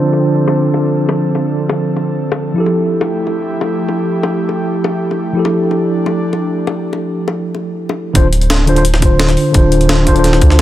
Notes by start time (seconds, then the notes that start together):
Already playing: D3 F3 C4 D4 F4 A4 C5
0.13 high bongo
0.48 high bongo
0.74 high bongo
1.09 high bongo
1.35 high bongo
1.69 high bongo
1.96 high bongo
2.32 high bongo
2.54 F3 A3 E4 G4
2.58 G4 A4
2.66 high bongo
3.01 high bongo
3.27 high bongo
3.61 high bongo
3.88 high bongo
4.23 high bongo
4.49 high bongo
4.84 high bongo
5.11 high bongo
5.33 F3 D4 E4
5.37 G4 A4
5.45 high bongo
5.71 high bongo
6.06 high bongo
6.33 high bongo
6.67 high bongo
6.93 high bongo
7.28 high bongo
7.55 high bongo
7.89 high bongo
8.13 D1 D3 D4 F4 C5, kick, closed hi-hat
8.33 closed hi-hat
8.41 closed hi-hat
8.50 snare, closed hi-hat
8.66 D3 D4 F4 C5, closed hi-hat
8.75 D3 D4 F4 C5, closed hi-hat
8.85 closed hi-hat
8.94 snare
8.99 D3 D4, kick, closed hi-hat
9.03 F4 C5
9.19 snare, closed hi-hat
9.29 snare, closed hi-hat
9.37 open hi-hat
9.51 D1 D3 D4, kick, closed hi-hat
9.56 F4 C5
9.72 closed hi-hat
9.81 closed hi-hat
9.89 snare, closed hi-hat
10.05 D3 D4 F4 C5, kick, closed hi-hat
10.13 D3 D4, closed hi-hat
10.17 F4 C5
10.24 snare, closed hi-hat
10.33 snare
10.41 D2, kick, closed hi-hat
10.50 snare